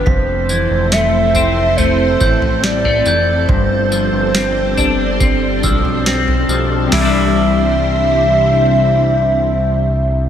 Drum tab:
CC |----------------|----------------|x---------------|
TB |--x-x-x-x-x-x-x-|--x-x-x-x-x-x-x-|----------------|
SD |----o-------o---|----o-------o---|o---------------|
FT |o-----o-o--o-o--|o-----o-o--o-o--|o---------------|
BD |o---------o-----|o-------o-o-----|----------------|